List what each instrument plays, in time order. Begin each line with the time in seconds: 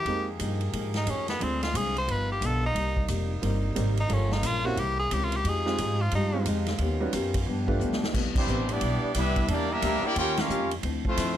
Already playing: trombone section A#3, tenor saxophone G4
0.05 upright bass F2, trombone section D#3 G4 G#4, steel-string acoustic guitar F3 A#3 D#4 G#4, upright piano G#3 A#3 C4 D#4 G4, kick, ride
0.39 upright bass G2, steel-string acoustic guitar F3 A#3 D#4 G#4, kick, hi-hat pedal, ride
0.61 ride
0.72 upright bass G#2, steel-string acoustic guitar F3 A#3 D#4 G#4, kick, ride
0.94 tenor saxophone D#4, snare, ride
1.06 upright bass F2, steel-string acoustic guitar F3 A#3 D#4 G#4, tenor saxophone C#4, kick, hi-hat pedal, ride
1.28 tenor saxophone B3, snare, ride
1.39 upright bass D2, steel-string acoustic guitar D3 G#3 C4 F4, trombone section D3 C4 F4, upright piano G#3 C4 D4 F4 G#4, kick, ride
1.43 tenor saxophone C4
1.63 tenor saxophone F4, snare, ride
1.73 upright bass C2, steel-string acoustic guitar D3 G#3 C4 F4, tenor saxophone G#4, kick, hi-hat pedal, ride
1.97 tenor saxophone C5, ride
2.07 upright bass G1, steel-string acoustic guitar G2 F3 B3 D#4, trombone section D#3 G3 B3, kick, ride
2.11 tenor saxophone B4
2.32 tenor saxophone G4
2.40 upright bass B1, steel-string acoustic guitar G2 F3 B3 D#4, kick, hi-hat pedal, ride
2.46 tenor saxophone A4
2.66 tenor saxophone D#4
2.73 upright bass C2, steel-string acoustic guitar C3 G3 A#3 D#4, trombone section C3 A#3 D#4, kick, ride
2.97 kick
3.08 upright bass F1, steel-string acoustic guitar C3 G3 A#3 D#4, kick, hi-hat pedal, ride
3.42 upright bass G1, steel-string acoustic guitar C3 G3 A#3 D#4, upright piano G3 A#3 C4 D#4 G4, kick, ride
3.75 upright bass G#1, steel-string acoustic guitar C3 G3 A#3 D#4, upright piano G3 A#3 C4 D#4 G4, kick, hi-hat pedal, ride
3.97 tenor saxophone D#4, ride
4.09 upright bass G1, steel-string acoustic guitar G2 F3 A#3 C#4, trombone section C#3 G3 F4, upright piano G3 A#3 C#4 F4 A4, kick, ride
4.13 tenor saxophone C#4
4.31 tenor saxophone D#4, snare
4.42 upright bass A#1, steel-string acoustic guitar G2 F3 A#3 C#4, kick, hi-hat pedal, ride
4.46 tenor saxophone F4
4.64 upright piano A#3 C4 C#4 E4 G4, tenor saxophone F#4
4.77 upright bass C2, steel-string acoustic guitar C3 E3 A#3 C#4, trombone section C#3 C4 E4, tenor saxophone G4, kick, ride
4.99 tenor saxophone G#4
5.11 upright bass C#2, steel-string acoustic guitar C3 E3 A#3 C#4, tenor saxophone G4, kick, hi-hat pedal, ride
5.24 tenor saxophone F4
5.32 ride
5.36 tenor saxophone G4
5.44 upright bass F2, steel-string acoustic guitar F3 G#3 D#4 G4, trombone section F3 C4 D#4 F4, tenor saxophone G#4, kick, ride
5.65 upright piano G#3 C4 D#4 F4 G4, snare
5.78 upright bass G#2, steel-string acoustic guitar F3 G#3 D#4 G4, kick, hi-hat pedal, ride
6.01 tenor saxophone F4
6.11 upright bass G2, steel-string acoustic guitar F3 G#3 D#4 G4, tenor saxophone D#4, kick, ride
6.34 upright piano G#3 C4 D#4 F4 G4
6.45 upright bass F2, steel-string acoustic guitar F3 G#3 D#4 G4, kick, hi-hat pedal, ride
6.66 snare, ride
6.78 upright bass D#2, steel-string acoustic guitar D#3 B3 C#4 G4, trombone section D#3 B3 C#4, kick, ride
7.00 upright piano G3 C#4 D#4 F#4 B4
7.12 upright bass F#2, steel-string acoustic guitar D#3 B3 C#4 G4, kick, hi-hat pedal, ride
7.34 kick, ride
7.45 steel-string acoustic guitar G2 F3 B3 D4, upright bass G2, trombone section F3 D4 G4, kick
7.67 upright piano A3 D4 F4 G4 B4, kick
7.80 upright bass D2, steel-string acoustic guitar G2 F3 B3 D4, hi-hat pedal
7.92 snare
8.04 snare
8.14 upright bass C2, steel-string acoustic guitar C3 E3 B3 D4, kick, crash
8.35 trombone section E3 G3 C4, trumpet section G3 D4 E4 C5, kick, crash
8.47 upright bass A1, steel-string acoustic guitar C3 E3 B3 D4, hi-hat pedal
8.68 trombone section G3 B3 D4, trumpet section B3 E4 G4 D5, ride
8.80 upright bass B1, steel-string acoustic guitar C3 E3 B3 D4, kick, ride
9.14 upright bass C2, steel-string acoustic guitar C3 E3 B3 D4, trombone section G3 B3 E4, trumpet section D4 G4 B4 E5, kick, snare, hi-hat pedal, ride
9.36 kick, ride
9.48 upright bass E2, steel-string acoustic guitar E3 A#3 D4 G4, trombone section G3 A#3 D4, trumpet section A#3 E4 D5, kick, ride
9.52 trumpet section G4
9.70 trombone section G3 A#3 E4, trumpet section D4 G4 A#4 E5
9.81 upright bass D2, steel-string acoustic guitar E3 A#3 D4 G4, kick, hi-hat pedal, ride
10.03 trombone section A#3 D4 G4, trumpet section E4 A#4 D5 G5, muted upright bass stroke
10.15 upright bass D#2, steel-string acoustic guitar D#3 C#4 F4 G4, trombone section A#3 C#4 G4, trumpet section F4 C#5 G5, kick, ride
10.19 trumpet section A#4
10.37 trombone section A#3 C#4 F4, trumpet section C#4 G4 A#4 F5, snare, ride
10.48 upright bass F2, steel-string acoustic guitar D#3 C#4 F4 G4, hi-hat pedal
10.71 ride
10.82 upright bass D2, steel-string acoustic guitar D3 F3 C4 E4, kick, ride
11.05 trombone section F3 A3 C4, trumpet section A3 E4 C5, kick
11.09 trumpet section F4
11.16 upright bass F2, steel-string acoustic guitar D3 F3 C4 E4, kick, snare, hi-hat pedal, ride